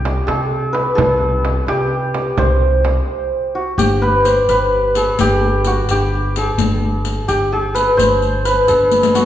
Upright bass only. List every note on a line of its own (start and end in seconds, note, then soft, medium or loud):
0.00 0.19 C2 loud
0.28 0.89 C3 medium
0.98 1.59 C2 loud
1.67 2.28 C3 medium
2.37 2.99 C2 loud
3.78 4.39 G1 loud
4.49 5.09 G1 medium
5.19 5.80 G1 loud
5.89 6.49 G1 medium
6.58 7.19 G1 loud
7.29 7.89 G1 medium
7.99 8.59 G1 medium
8.69 9.25 G1 medium